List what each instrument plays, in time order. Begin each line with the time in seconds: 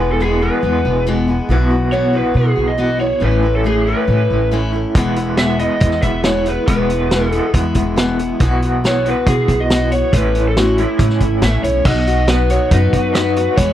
Already playing: upright bass E1, clean electric guitar E2 B2 E3 G#3 B3 G#4, steel-string acoustic guitar E4, lead electric guitar B4
0.00 steel-string acoustic guitar E3 G#3 B3
0.12 lead electric guitar A4
0.20 steel-string acoustic guitar E2 B2 E3 G#3 B3 E4, lead electric guitar G#4
0.41 clean electric guitar E2 B2 G#4, steel-string acoustic guitar E3 G#3 B3 E4, lead electric guitar B4
0.62 upright bass E2, steel-string acoustic guitar E3 G#3 B3 E4
0.85 upright bass E1, steel-string acoustic guitar E3 G#3 B3 E4
1.06 steel-string acoustic guitar E2 B2 E3 G#3 B3 E4
1.27 steel-string acoustic guitar E3 G#3 B3 E4
1.49 upright bass B1, steel-string acoustic guitar B2 E3 B3 E4 F#4
1.70 steel-string acoustic guitar B3 E4 F#4
1.92 steel-string acoustic guitar B2 E3 B3 E4 F#4, lead electric guitar C#5
2.13 clean electric guitar B2 E3, steel-string acoustic guitar B3 E4 F#4, lead electric guitar B4
2.34 upright bass B2, steel-string acoustic guitar E3 B3 E4 F#4, lead electric guitar G#4
2.56 upright bass B1, steel-string acoustic guitar B3 E4 F#4
2.68 lead electric guitar D#5
2.78 steel-string acoustic guitar B2 E3 B3 E4 F#4
2.99 steel-string acoustic guitar B3 E4 F#4, lead electric guitar C#5
3.20 upright bass A1, steel-string acoustic guitar A2 E3 A3 C#4 E4, lead electric guitar B4
3.42 steel-string acoustic guitar A3 C#4 E4
3.56 lead electric guitar A4
3.64 steel-string acoustic guitar A2 E3 A3 C#4 E4, lead electric guitar G#4
3.87 clean electric guitar A2 E3, steel-string acoustic guitar A3 C#4 E4, lead electric guitar B4
4.07 upright bass A2, steel-string acoustic guitar E3 A3 C#4 E4
4.30 upright bass A1, steel-string acoustic guitar A3 C#4 E4
4.51 steel-string acoustic guitar A2 E3 A3 C#4 E4
4.73 steel-string acoustic guitar A3 C#4 E4
4.95 upright bass E1, steel-string acoustic guitar E2 B2 E3 G#3 B3 E4, kick, closed hi-hat
5.16 steel-string acoustic guitar E3 G#3 B3 E4, closed hi-hat
5.37 steel-string acoustic guitar E2 B2 E3 G#3 B3 E4, lead electric guitar E5, snare, closed hi-hat
5.59 clean electric guitar E2 B2, steel-string acoustic guitar E3 G#3 B3 E4, lead electric guitar D#5, closed hi-hat
5.80 upright bass E2, steel-string acoustic guitar E3 G#3 B3, kick, closed hi-hat
5.85 steel-string acoustic guitar E4
5.91 snare
6.02 upright bass E1, steel-string acoustic guitar G#3 B3 E4, lead electric guitar E5, kick, closed hi-hat
6.07 steel-string acoustic guitar E3
6.24 steel-string acoustic guitar E2 B2 E3 G#3 B3 E4, lead electric guitar C#5, snare, closed hi-hat
6.46 steel-string acoustic guitar G#3 B3 E4, lead electric guitar B4, closed hi-hat
6.50 steel-string acoustic guitar E3
6.67 upright bass E1, steel-string acoustic guitar E2 B2 E3 G#3 B3 E4, lead electric guitar B4, kick, closed hi-hat
6.90 steel-string acoustic guitar G#3 B3 E4, closed hi-hat
6.94 steel-string acoustic guitar E3
7.11 steel-string acoustic guitar E2 B2 E3 G#3 B3 E4, snare, closed hi-hat
7.26 lead electric guitar A4
7.32 clean electric guitar E2 B2, steel-string acoustic guitar E3 G#3 B3 E4, closed hi-hat
7.54 upright bass E2, steel-string acoustic guitar E3 G#3 B3 E4, kick, closed hi-hat
7.75 upright bass E1, steel-string acoustic guitar E3 G#3 B3 E4, kick, closed hi-hat
7.96 steel-string acoustic guitar E2 B2 E3 G#3 B3 E4, snare, closed hi-hat
8.19 steel-string acoustic guitar E3 G#3 B3 E4, closed hi-hat
8.40 upright bass B1, steel-string acoustic guitar B2 E3 B3 E4 F#4, kick, closed hi-hat
8.62 steel-string acoustic guitar B3 E4 F#4, closed hi-hat
8.84 steel-string acoustic guitar B2 E3 B3 E4 F#4, lead electric guitar C#5, snare, closed hi-hat
9.06 clean electric guitar B2 E3, steel-string acoustic guitar B3 E4 F#4, lead electric guitar B4, closed hi-hat
9.27 upright bass B2, steel-string acoustic guitar E3 B3 E4 F#4, lead electric guitar G#4, kick, closed hi-hat
9.48 upright bass B1, steel-string acoustic guitar E4 F#4, kick, closed hi-hat
9.53 steel-string acoustic guitar B3
9.60 lead electric guitar D#5
9.70 steel-string acoustic guitar B2 E3 B3 E4 F#4, snare, closed hi-hat
9.92 steel-string acoustic guitar B3 E4 F#4, lead electric guitar C#5, closed hi-hat
10.13 upright bass A1, steel-string acoustic guitar A2 E3 A3 C#4 E4, lead electric guitar B4, kick, closed hi-hat
10.35 steel-string acoustic guitar A3 C#4 E4, closed hi-hat
10.48 lead electric guitar A4
10.57 steel-string acoustic guitar A2 E3 A3 C#4 E4, lead electric guitar F#4, snare, closed hi-hat
10.78 clean electric guitar A2 E3, steel-string acoustic guitar A3 C#4 E4, lead electric guitar E4, closed hi-hat
10.99 upright bass A2, steel-string acoustic guitar E3 A3 C#4 E4, kick, closed hi-hat
11.10 snare
11.20 upright bass G#1, steel-string acoustic guitar A3 C#4 E4, kick, closed hi-hat
11.42 upright bass A1, steel-string acoustic guitar A2 E3 A3 C#4 E4, lead electric guitar E5, snare, closed hi-hat
11.63 upright bass B1, steel-string acoustic guitar C#4 E4, lead electric guitar C#5, closed hi-hat
11.67 steel-string acoustic guitar A3
11.85 upright bass B1, steel-string acoustic guitar B2 F#3 B3 D#4 F#4, lead electric guitar D#5, kick, crash
12.07 steel-string acoustic guitar B3 D#4 F#4, closed hi-hat
12.28 steel-string acoustic guitar F#3 B3 D#4 F#4, lead electric guitar B4, snare, closed hi-hat
12.50 clean electric guitar F#3, steel-string acoustic guitar D#4 F#4, lead electric guitar C#5, closed hi-hat
12.54 steel-string acoustic guitar B3
12.71 upright bass F#2, steel-string acoustic guitar B2 F#3 B3 D#4 F#4, lead electric guitar B4, kick, closed hi-hat
12.93 upright bass F#2, steel-string acoustic guitar B3 D#4 F#4, kick, closed hi-hat
13.14 steel-string acoustic guitar F#3 B3 D#4 F#4, lead electric guitar B4, snare, closed hi-hat
13.36 steel-string acoustic guitar B3 D#4 F#4, closed hi-hat
13.56 steel-string acoustic guitar E2 B2 E3 G#3 B3 E4, upright bass E2, lead electric guitar C#5, kick, closed hi-hat